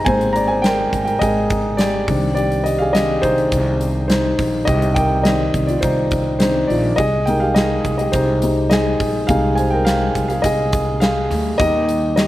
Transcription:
Already playing: grand piano D#4 G4 G#4 A#4 C5 D#5 F5 G5 A#5
0.05 upright bass G#1, grand piano G#3 A#3 C4 C5 G#5, kick, closed hi-hat
0.21 closed hi-hat
0.33 grand piano D5 A#5, closed hi-hat
0.47 grand piano C5 G#5
0.62 grand piano A#4 G5, snare, closed hi-hat
0.93 upright bass G#1, kick, closed hi-hat
1.05 grand piano A#4 G5, closed hi-hat
1.19 upright bass G#1, grand piano G#4 D#5, kick, closed hi-hat
1.50 kick, closed hi-hat
1.77 grand piano G4 D5, snare, closed hi-hat
2.08 upright bass C2, grand piano D#3 C4 D4, kick, open hi-hat
2.35 grand piano G4 D5, closed hi-hat
2.52 closed hi-hat
2.64 grand piano G4 D#5, closed hi-hat
2.78 grand piano G#4 F5
2.93 grand piano D#3 C4 D4 G4 D#5, snare, closed hi-hat
3.22 upright bass C2, grand piano D#4 C5, kick, closed hi-hat
3.38 closed hi-hat
3.52 upright bass C2, kick, closed hi-hat
3.81 closed hi-hat
4.08 grand piano D#4 C5, snare, closed hi-hat
4.39 upright bass A#1, kick, snare, open hi-hat
4.65 upright bass C2, grand piano G4 D#5, kick, closed hi-hat
4.82 closed hi-hat
4.94 grand piano A#4 G5, kick, closed hi-hat
5.23 grand piano D#3 C4 G4 D5 D#5, snare, closed hi-hat
5.54 upright bass C2, kick, closed hi-hat
5.67 grand piano F4 D5, closed hi-hat
5.81 upright bass C2, grand piano D#4 C5, kick, closed hi-hat
6.11 kick, closed hi-hat
6.39 grand piano D#3 C4 D4 D#4 C5, snare, closed hi-hat
6.67 upright bass A#1, grand piano F4 D5, open hi-hat
6.96 upright bass C2, grand piano G#4 D#5, kick, closed hi-hat
7.26 grand piano G#3 D#4 G4 A#4 G5, closed hi-hat
7.40 grand piano G#4 F5
7.54 grand piano G#4 D#5, snare, closed hi-hat
7.85 upright bass C2, kick, closed hi-hat
7.98 grand piano G4 D#5, closed hi-hat
8.12 upright bass C2, grand piano D#4 C5, kick, closed hi-hat
8.42 grand piano G3 G#3 D#4, closed hi-hat
8.70 grand piano G#4 D#5, snare, closed hi-hat
9.00 upright bass A#1, kick, open hi-hat
9.27 upright bass C2, grand piano G3 G#3 D#4 G#4 F5, kick, closed hi-hat
9.55 grand piano C5 G#5, closed hi-hat
9.70 grand piano A#4 G5
9.85 grand piano G#4 F5, snare, closed hi-hat
10.15 upright bass C2, kick, closed hi-hat
10.28 grand piano G#4 F5, closed hi-hat
10.42 upright bass C2, grand piano G#4 D#5, kick, closed hi-hat
10.73 kick, closed hi-hat
11.00 grand piano G#4 F5, snare, closed hi-hat
11.30 upright bass D2, snare, open hi-hat
11.58 upright bass D#2, grand piano G3 A#3 D#4 G4 D#5, kick, closed hi-hat
11.89 closed hi-hat
12.16 grand piano G4 D#5, snare, closed hi-hat

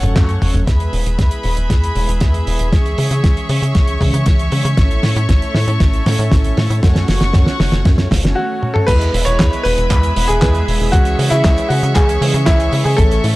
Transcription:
Already playing: grand piano C#4, string section A4 C#5 F#5 C#6
0.03 analog synth bass F#1, analog polysynth F#3 A3 C#4 A4, closed hi-hat, mid tom
0.16 analog synth bass F#2, kick, snare, clap, closed hi-hat, mid tom
0.29 closed hi-hat
0.42 analog synth bass F#1, mid tom, open hi-hat
0.54 analog synth bass F#1, closed hi-hat, mid tom
0.67 analog synth bass E2, string section G#4 B4 E5 B5, kick, snare, closed hi-hat
0.80 closed hi-hat
0.93 analog synth bass E1, open hi-hat
1.06 analog synth bass E1, closed hi-hat
1.19 analog synth bass E2, kick, snare, closed hi-hat
1.31 closed hi-hat
1.43 analog synth bass E1, open hi-hat
1.57 analog synth bass E1, closed hi-hat
1.70 analog synth bass E2, kick, snare, closed hi-hat
1.84 closed hi-hat
1.95 analog synth bass E1, analog polysynth G#3 B3 E4 B4, open hi-hat
2.08 analog synth bass E1, closed hi-hat
2.20 analog synth bass E2, kick, snare, closed hi-hat
2.34 closed hi-hat
2.47 analog synth bass E1, open hi-hat
2.59 analog synth bass E1, closed hi-hat
2.73 analog synth bass C#2, analog polysynth G#3, string section C#5 C#6, kick, snare, closed hi-hat
2.86 closed hi-hat
2.98 analog synth bass C#3, open hi-hat
3.11 analog synth bass C#3, closed hi-hat
3.24 analog synth bass C#2, kick, snare, closed hi-hat
3.37 closed hi-hat
3.49 analog synth bass C#3, open hi-hat
3.62 analog synth bass C#3, closed hi-hat
3.75 analog synth bass C#2, kick, snare, closed hi-hat
3.88 closed hi-hat
4.01 analog synth bass C#3, analog polysynth E3 G#3 C#4 G#4, kick, open hi-hat
4.14 analog synth bass C#3, closed hi-hat
4.26 analog synth bass C#2, kick, snare, closed hi-hat
4.39 closed hi-hat
4.52 analog synth bass C#3, open hi-hat
4.65 analog synth bass C#3, closed hi-hat
4.77 analog synth bass A1, analog polysynth A3 C#4 E4 C#5, string section A4, kick, snare, closed hi-hat
4.91 closed hi-hat
5.03 analog synth bass A2, snare, open hi-hat
5.16 analog synth bass A2, closed hi-hat
5.29 analog synth bass A1, kick, snare, closed hi-hat
5.42 closed hi-hat
5.55 analog synth bass A2, snare, open hi-hat
5.68 analog synth bass A2, closed hi-hat
5.80 analog synth bass A1, kick, snare, closed hi-hat
5.93 closed hi-hat
6.06 analog synth bass A2, analog polysynth A3 C#4 E4 C#5, snare, open hi-hat
6.19 analog synth bass A2, closed hi-hat
6.31 analog synth bass A1, kick, snare, closed hi-hat
6.44 closed hi-hat
6.57 analog synth bass A2, snare, open hi-hat
6.70 analog synth bass A2, closed hi-hat
6.83 analog synth bass F#2, analog polysynth A3 C#4 F#4 C#5, string section F#5 C#6, kick, snare, closed hi-hat
6.96 snare, closed hi-hat
7.08 analog synth bass F#1, snare, open hi-hat
7.21 analog synth bass F#1, snare, closed hi-hat
7.33 analog synth bass F#2, kick, snare, closed hi-hat
7.46 snare, closed hi-hat
7.60 analog synth bass F#1, snare, open hi-hat
7.72 analog synth bass F#1, snare, closed hi-hat
7.85 analog synth bass F#2, kick, snare, closed hi-hat
7.98 snare, closed hi-hat
8.11 analog synth bass F#1, kick, snare, open hi-hat
8.23 analog synth bass F#1, analog polysynth A3 C#4 F#4 C#5, snare, closed hi-hat
8.35 grand piano F#4
8.63 high tom
8.74 grand piano A4, mid tom
8.87 analog synth bass E2, analog polysynth G#3 B3 E4 B4, string section G#4 B4 E5 B5, grand piano B4, kick, closed hi-hat, crash, cabasa
9.01 closed hi-hat, cabasa
9.14 analog synth bass E1, open hi-hat
9.25 analog synth bass E1, grand piano C#5, closed hi-hat, cabasa
9.39 analog synth bass E2, kick, snare, clap, closed hi-hat, cabasa
9.52 closed hi-hat, cabasa
9.63 analog synth bass E1, grand piano B4, open hi-hat
9.78 analog synth bass E1, closed hi-hat, cabasa
9.90 analog synth bass E2, kick, clap, closed hi-hat, cabasa
10.03 closed hi-hat, cabasa
10.16 analog synth bass E1, analog polysynth G#3 B3 E4 B4, open hi-hat
10.28 analog synth bass E1, grand piano G#4, closed hi-hat, cabasa
10.42 analog synth bass E2, kick, snare, clap, closed hi-hat, cabasa
10.55 closed hi-hat, cabasa
10.68 analog synth bass E1, open hi-hat
10.79 analog synth bass E1, cabasa
10.92 analog synth bass C#2, analog polysynth E3 G#3 C#4 G#4, grand piano F#4, string section C#5 C#6, kick, closed hi-hat, cabasa
11.05 closed hi-hat, cabasa
11.19 analog synth bass C#3, open hi-hat
11.30 analog synth bass C#3, grand piano E4, closed hi-hat, cabasa
11.44 analog synth bass C#2, kick, snare, clap, closed hi-hat, cabasa
11.57 closed hi-hat, cabasa
11.69 analog synth bass C#3, grand piano F#4, open hi-hat
11.83 analog synth bass C#3, closed hi-hat, cabasa
11.94 analog synth bass C#2, grand piano G#4, kick, clap, closed hi-hat, cabasa
12.09 closed hi-hat, cabasa
12.21 analog synth bass C#3, analog polysynth E3 G#3 C#4 G#4, open hi-hat
12.34 analog synth bass C#3, closed hi-hat, cabasa
12.45 analog synth bass C#2, grand piano E4, kick, snare, clap, closed hi-hat, cabasa
12.60 closed hi-hat, cabasa
12.73 analog synth bass C#3, open hi-hat
12.84 analog synth bass C#3, grand piano G#4, cabasa
12.97 analog synth bass A1, analog polysynth E3 A3 C#4 A4, string section A3, grand piano A4, kick, closed hi-hat, cabasa
13.11 closed hi-hat, cabasa
13.24 analog synth bass A2, open hi-hat

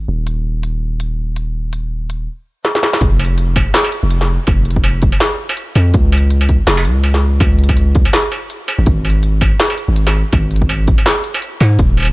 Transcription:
0.08 808-style bass D#1
0.27 closed hi-hat
0.63 closed hi-hat
1.00 closed hi-hat
1.36 closed hi-hat
1.73 closed hi-hat
2.10 closed hi-hat
2.65 snare
2.75 snare
2.83 snare
2.93 snare
3.01 808-style bass F1, kick, closed hi-hat
3.20 closed hi-hat, struck metal
3.25 closed hi-hat
3.38 closed hi-hat
3.56 kick, closed hi-hat, struck metal
3.74 snare, closed hi-hat
3.85 struck metal
3.92 closed hi-hat
4.03 808-style bass F1
4.11 closed hi-hat
4.21 snare
4.47 808-style bass F1, kick, closed hi-hat, struck metal
4.65 closed hi-hat
4.71 closed hi-hat
4.76 kick
4.84 closed hi-hat, struck metal
5.02 kick, closed hi-hat
5.12 struck metal
5.20 snare, closed hi-hat
5.49 struck metal
5.57 closed hi-hat
5.75 808-style bass F2, struck metal
5.94 808-style bass C#2, kick, closed hi-hat
6.12 closed hi-hat, struck metal
6.18 closed hi-hat
6.31 closed hi-hat
6.41 struck metal
6.49 kick, closed hi-hat
6.67 808-style bass F1, snare, closed hi-hat
6.77 struck metal
6.85 808-style bass C#2, closed hi-hat
7.04 closed hi-hat, struck metal
7.14 snare
7.40 808-style bass C#2, kick, closed hi-hat, struck metal
7.59 closed hi-hat
7.64 closed hi-hat
7.69 kick, struck metal
7.77 closed hi-hat
7.95 kick, closed hi-hat
8.05 struck metal
8.13 snare, closed hi-hat
8.32 closed hi-hat, struck metal
8.50 closed hi-hat
8.68 struck metal
8.79 808-style bass G#1
8.86 808-style bass G#1, kick, closed hi-hat
9.05 closed hi-hat, struck metal
9.10 closed hi-hat
9.23 closed hi-hat
9.41 kick, closed hi-hat, struck metal
9.60 snare, closed hi-hat
9.70 struck metal
9.78 closed hi-hat
9.88 808-style bass G#1
9.96 closed hi-hat
10.07 snare, struck metal
10.33 808-style bass G#1, kick, closed hi-hat, struck metal
10.51 closed hi-hat
10.56 closed hi-hat
10.62 kick
10.69 closed hi-hat, struck metal
10.88 kick, closed hi-hat
10.98 struck metal
11.06 snare, closed hi-hat
11.24 closed hi-hat
11.34 struck metal
11.42 closed hi-hat
11.61 808-style bass G#2, struck metal
11.79 808-style bass D#1, kick, closed hi-hat
11.97 closed hi-hat, struck metal
12.00 closed hi-hat, struck metal
12.03 struck metal
12.05 struck metal

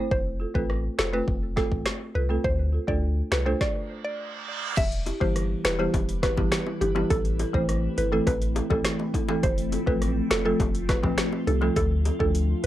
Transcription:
0.11 sub bass F1, synth pluck C5, kick
0.40 marimba F4 A4
0.54 sub bass A1, marimba A3 C4 F4 A4, synth pluck B4, kick
0.70 cross-stick
0.98 sub bass F1, marimba F4 C5, synth pluck A4, finger snap, snare
1.13 marimba A3 C4 F4 B4, synth pluck B4
1.28 sub bass F1, kick
1.56 marimba A3 C4 F4 A4, synth pluck A4, kick, snare
1.72 sub bass A1, kick
1.86 finger snap, snare
2.15 sub bass C2, marimba F4 A4, synth pluck B4
2.29 marimba A3 C4 F4 A4
2.44 sub bass D2, synth pluck C5, kick
2.73 marimba F4 A4
2.87 sub bass D2, marimba A3 D4 F4 A4, synth pluck D5, kick
3.31 sub bass C2, marimba F4 A4, synth pluck B4, finger snap, snare
3.46 marimba A3 D4 F4 A4, synth pluck C5
3.61 synth pluck D5, kick, snare, reverse cymbal
4.05 synth pluck D5
4.77 sub bass E1, ambient pad E3 E4 G4 B4, synth pluck E5, kick, closed hi-hat, crash, high bongo
4.92 closed hi-hat
5.06 marimba E4 G4, closed hi-hat, high bongo
5.20 sub bass G1, marimba E3 G3 B3 E4 G4, synth pluck C5, kick
5.36 cross-stick, closed hi-hat
5.64 sub bass E1, marimba E4 G4, synth pluck B4, finger snap, snare, closed hi-hat
5.79 marimba E3 G3 B3 E4 G4, synth pluck C5
5.94 sub bass E1, kick, closed hi-hat, high bongo
6.09 closed hi-hat
6.22 marimba E4 G4, synth pluck B4, kick, snare, closed hi-hat, high bongo
6.37 sub bass G1, marimba E3 G3 B3 E4 G4, kick, high bongo
6.52 finger snap, snare, closed hi-hat
6.66 high bongo
6.81 sub bass G1, marimba E4 G4, synth pluck G4, closed hi-hat, low bongo
6.95 marimba E3 G3 B3 E4 G4, high bongo
7.10 sub bass A1, ambient pad A3 C4, synth pluck A4, kick, closed hi-hat, high bongo
7.25 closed hi-hat
7.39 marimba E4 A4, closed hi-hat, high bongo
7.53 sub bass A1, marimba E3 A3 C4 E4 C5, synth pluck C5, kick
7.69 cross-stick, closed hi-hat
7.97 sub bass G1, marimba E4 A4, synth pluck B4, closed hi-hat
8.12 marimba E3 A3 C4 E4 A4, synth pluck A4
8.27 sub bass A1, synth pluck B4, kick, closed hi-hat, high bongo
8.42 closed hi-hat
8.55 marimba E4 A4, closed hi-hat, high bongo
8.70 sub bass A1, marimba E3 A3 C4 E4 A4, synth pluck A4, kick, high bongo
8.85 finger snap, snare, closed hi-hat
8.99 high bongo
9.14 marimba E4 A4, kick, closed hi-hat, low bongo
9.28 marimba E3 A3 C4 E4 A4, high bongo
9.43 sub bass F1, ambient pad F4, synth pluck C5, kick, closed hi-hat, high bongo
9.58 closed hi-hat
9.72 marimba F4 A4, closed hi-hat, high bongo
9.87 sub bass A1, marimba F3 A3 C4 F4 A4, synth pluck B4, kick
10.02 cross-stick, closed hi-hat
10.30 sub bass F1, marimba F4 A4, synth pluck A4, finger snap, snare, closed hi-hat
10.45 marimba F3 A3 C4 F4 A4, synth pluck A4
10.60 sub bass F1, kick, closed hi-hat, high bongo
10.75 closed hi-hat
10.88 marimba F4 A4, synth pluck B4, kick, snare, closed hi-hat, high bongo
11.03 sub bass A1, marimba F3 A3 C4 F4 B4, kick, high bongo
11.18 finger snap, snare, closed hi-hat
11.32 high bongo
11.47 sub bass C2, marimba F4 G4, synth pluck A4, closed hi-hat, low bongo
11.61 marimba F3 A3 C4 F4 A4, high bongo
11.76 sub bass D2, ambient pad D3 D4 A4, synth pluck A4, kick, closed hi-hat, high bongo
12.05 marimba F4 A4, closed hi-hat, high bongo
12.19 sub bass D2, marimba F3 A3 D4 F4 A4, synth pluck A4, kick
12.35 closed hi-hat
12.63 marimba F4

